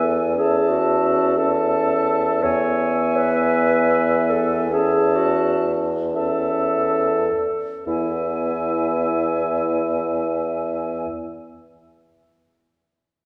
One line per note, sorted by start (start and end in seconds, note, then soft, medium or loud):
0.00 2.39 E2 soft
0.00 0.19 B3 soft
0.00 0.36 A4 soft
0.00 0.33 E5 soft
0.00 0.33 G#5 soft
0.36 1.36 C#4 soft
0.36 0.71 G#4 medium
0.36 1.37 E5 soft
0.36 1.37 A5 soft
0.69 1.39 F#4 soft
1.38 2.41 C#4 soft
1.38 2.44 A4 medium
1.38 2.41 E5 soft
1.38 2.46 A5 soft
2.43 7.30 E2 soft
2.43 4.68 B3 soft
2.43 3.17 C#5 medium
2.43 4.67 E5 soft
2.43 4.72 G#5 soft
3.16 4.31 B4 medium
4.30 4.72 A4 medium
4.72 5.72 C#4 soft
4.72 5.17 G#4 medium
4.72 5.72 E5 soft
4.72 5.72 A5 soft
5.16 5.78 F#4 medium
6.13 7.30 C#4 soft
6.13 7.83 A4 medium
6.13 7.31 E5 soft
6.13 7.30 A5 soft
7.86 11.06 E2 soft
7.86 11.06 B3 soft
7.86 11.05 E4 soft
7.86 11.06 E5 soft
7.86 11.07 G#5 soft